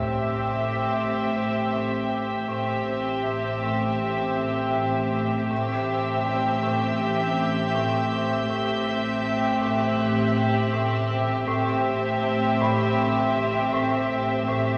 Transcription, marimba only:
0.23 A3
0.61 A2
0.98 A2
1.36 A2
1.73 A2
2.11 A2
2.48 A2
2.86 A2
3.25 A3
3.63 A2
4.39 A2
4.76 A2
5.14 A2
5.51 A2
5.88 A2
6.25 A3
6.63 A2
7.01 A2
7.38 A2
7.75 A2
8.12 A2
8.50 A2
8.87 A2
9.25 A3
9.62 A2
9.99 A2
10.37 A2
10.73 A2
11.10 A2
11.48 A2
12.24 A3
12.61 A2
12.99 A2
13.36 A2
13.73 A2
14.11 A2
14.48 A2

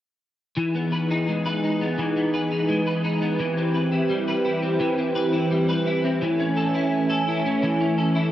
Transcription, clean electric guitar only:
0.57 E3
0.75 B3
0.92 B4
1.11 D#4
1.28 G#3
1.46 B4
1.64 D#4
1.81 B3
1.98 E3
2.16 B3
2.34 B4
2.52 D#4
2.69 G#3
2.87 B4
3.04 D#4
3.22 B3
3.40 E3
3.57 C4
3.75 B4
3.92 E4
4.09 G3
4.28 B4
4.45 E4
4.62 C4
4.80 E3
4.98 C4
5.15 B4
5.33 E4
5.51 G3
5.69 B4
5.86 E4
6.04 C4
6.22 E3
6.40 C#4
6.57 A4
6.75 E4
7.10 A4
7.28 E4
7.46 C#4
7.63 E3
7.80 C#4
7.98 A4
8.15 E4

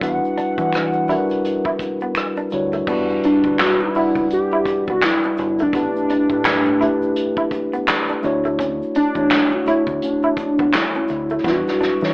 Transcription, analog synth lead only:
0.03 F#5
3.25 D4
3.61 F#4
3.83 E4
4.33 G4
4.90 F#4
5.05 E4
5.62 D4
8.97 D4
9.53 F#4
9.68 E4
10.03 D4
10.75 E4
11.47 F#4

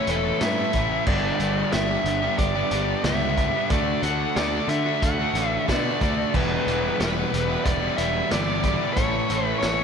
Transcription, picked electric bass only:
0.08 E1
0.41 G2
0.74 A1
1.07 G1
1.40 G1
1.73 G1
2.04 G1
2.39 G1
2.71 G1
3.04 C#2
3.71 D2
4.03 D2
4.36 D2
4.68 D3
5.03 D2
5.34 A1
5.69 B2
6.01 D2
6.35 E1
6.67 E1
7.00 E1
7.34 E1
7.66 E1
7.99 E1
8.32 G1
8.97 A1
9.30 A1
9.63 A1

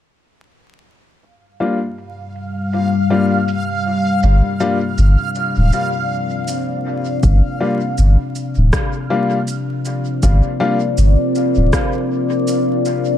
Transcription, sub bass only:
4.23 G1
4.98 G1
5.57 D1
7.23 G1
7.98 G1
8.57 D1
10.23 G1
10.98 G1
11.56 D1

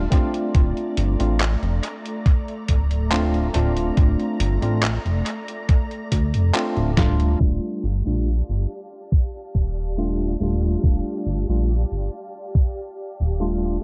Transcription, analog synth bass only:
0.55 D1
0.98 G1
1.20 A1
1.63 F1
2.69 D1
3.55 D1
3.97 D1
4.40 G1
4.62 A1
5.05 F1
6.12 D2
6.34 F1
6.77 D1
7.41 D#1
7.84 G1
8.06 A#1
8.49 G1
9.55 D#1
10.41 D#1
10.84 D#1
11.26 G1
11.49 A#1
11.92 G1
13.20 D#1

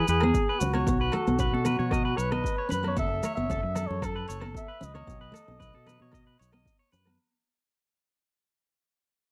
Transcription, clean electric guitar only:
0.09 B4
0.24 G#4
0.49 B4
0.75 C#5
1.01 B4
1.13 A4
1.40 B4
1.54 A4
1.66 B4
1.79 C#5
1.92 D#5
2.05 B4
2.17 C#5
2.32 D#5
2.58 C#5
2.71 B4
2.98 A4
3.25 C#5
3.51 A4
3.63 muted clean electric guitar stroke
3.76 A4
4.03 A4
4.16 B4
4.29 C#5
4.40 A4
4.68 B4
4.95 C#5
5.21 B4
5.34 A4
5.60 B4
5.75 A4
5.87 B4
6.02 C#5
6.14 D#5
6.27 B4
6.39 C#5
6.53 D#5
6.79 C#5
6.92 B4

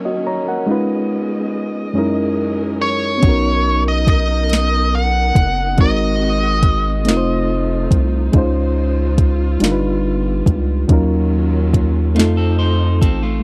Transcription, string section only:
Already playing: D#3 F#3 A#3 C#4 C#5
0.67 C#3 G#3 B3 D#5
1.95 E3 F#3 C#4 G#4 A#4
3.22 B3 D#4 A#4
5.78 G#3 C4 F#4
7.05 A3 D#4 F4
8.32 C#3 G#3 F4 C5
9.61 G3 B3
10.89 D#3 F#3 A#3 C#4 F4
12.16 F3 A3 D#4

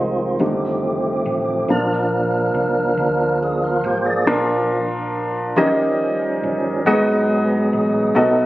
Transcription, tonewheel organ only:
Already playing: D#3 F3 C4 F4
0.39 F3 A3 C4 G4
1.70 F3 A#3 D4 A#4
3.43 D4 G#4
3.62 F4 A#4
3.85 G4 C5
4.05 G#4 D5
4.27 F3 A#3 D4
5.56 F3 G3 C#4
6.86 F#3 G#3 B3 D#4 F#4
6.94 G#4
8.17 F#3 A3 B3 D#4 A4

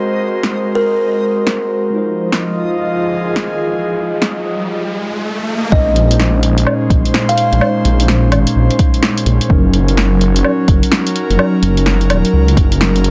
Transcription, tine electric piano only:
Already playing: G#3 C4 F#4 A#4
1.90 G#3 D#4
1.95 F4 C5
5.70 G#3 C#4 D#4
5.74 C5
6.09 G#3 C#4 D#4 C5
7.60 G#3 C#4 D#4 C5
7.98 G#3 C#4 D#4
8.02 C5
9.48 F#3 C#4 D#4
9.52 A#4
9.87 F#3 C#4 D#4 A#4
11.37 F#3 C#4 D#4
11.41 A#4
11.75 F#3 C#4 D#4
11.80 A#4

